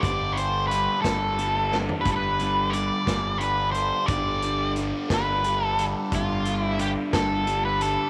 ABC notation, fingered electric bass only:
X:1
M:6/8
L:1/8
Q:3/8=59
K:Gmix
V:1 name="Fingered electric bass" clef=bass
G,,,3 G,,,3 | G,,,3 G,,,3 | G,,,3 G,,,3 | G,,,3 G,,,3 |]